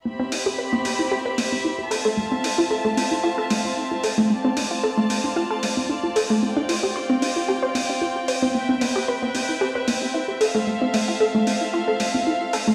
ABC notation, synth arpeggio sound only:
X:1
M:4/4
L:1/16
Q:"Swing 16ths" 1/4=113
K:C
V:1 name="Synth arpeggio sound"
B, C E G B B, C E G B B, C E G A A, | A, C E F A A, C E F A A, C E F A A, | A, C D F A A, C D F A A, C D F A A, | C D F G c C D F G c C D F G c C |
B, C B, G B B, C E G B B, C E G A A, | A, C A, F A A, C E F A A, C E F A A, |]